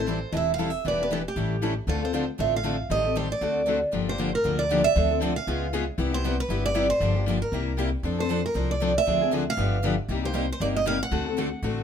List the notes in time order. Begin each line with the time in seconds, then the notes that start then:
Already playing: A1
0.00 C5
0.06 E3 G3 C4 E4 A4
0.32 E1 E3 G3 C4 E4 A4 D#5
0.37 E5
0.54 F5
0.58 E3 G3 C4 E4 A4
0.70 E5
0.85 E1 E3 G3 B3 D4 E4 G4 B4 D5
1.00 B3 D4 G4 B4
1.10 E3 G3 B3 D4 E4 G4 A4 B4
1.28 G4
1.36 A1 E3 G3 C#4 E4 A4
1.62 E3 G3 C#4 E4 A4
1.87 D2 D3 F3 A3 C4 D4 F4 A4
2.01 C4 F4 A4 C5
2.13 D3 F3 A3 C4 D4 F4 A4
2.38 A1 D3 F3 A3 C4 D4 F4 A4 E5
2.56 F5
2.63 D3 F3 A3 C4 D4 F4 A4
2.90 A1 D#3 G3 C4 G4 A4 D#5
3.05 C4 G4 A4
3.16 D#3 G3 C4 G4 A4 C5
3.32 D5
3.41 D2 D3 A3 C4 F#4 A4
3.67 D3 A3 C4 F#4 A4
3.92 G1 D3 F3 A#3 D4 G4
4.08 A#3 D4 G4 C5
4.18 D3 F3 A#3 D4 G4
4.35 A#4
4.45 D2 D3 F3 A#3 D4 G4
4.59 D5
4.71 D3 F3 A#3 D4 G4
4.84 E5
4.95 D2 D3 F3 C4 D4 A4
5.10 C4 D4 A4
5.20 D3 F3 C4 D4 A4
5.36 F5
5.47 C#2 C#3 G#3 B3 F4 G#4
5.73 C#3 G#3 B3 F4 G#4
5.98 C2 C3 G3 B3 E4 G4
6.11 B3 E4 G4 C5
6.24 C3 G3 B3 E4 G4
6.40 B4
6.49 G1 C3 G3 B3 E4 G4
6.66 D5
6.74 C3 G3 B3 E4 G4
6.90 C5
7.00 G1 D3 F3 A#3 D4 G4
7.16 A#3 D4 G4
7.26 D3 F3 A#3 D4 G4
7.42 A#4
7.52 C2 C3 G3 A#3 E4 G4
7.77 C3 G3 A#3 E4 G4
8.03 F2 F3 C4 D4 A4
8.18 C4 D4 A4 C5
8.30 F3 C4 D4 A4
8.46 A#4
8.55 C2 F3 C4 D4 A4
8.71 D5
8.81 F3 C4 D4 A4
8.98 E5
9.07 D2 D3 F3 C4 D4 G#4
9.21 C4 D4 G#4
9.33 D3 F3 C4 D4 G#4
9.50 F5
9.57 G1 D3 F3 B3 D4 G4
9.84 D3 F3 B3 D4 G4
10.08 C2 C3 G3 A#3 D#4 G4
10.24 A#3 D#4 G4 C5
10.34 C3 G3 A#3 D#4 G4
10.52 C5
10.60 G1 C3 G3 A#3 D#4 G4 D5
10.76 D#5
10.86 C3 G3 A#3 D#4 G4 F5
11.03 F#5
11.11 D2 D3 A3 C4 F#4 A4
11.26 C4 F#4 A4
11.38 D3 A3 C4 F#4 A4
11.62 A1 D3 A3 C4 F#4 A4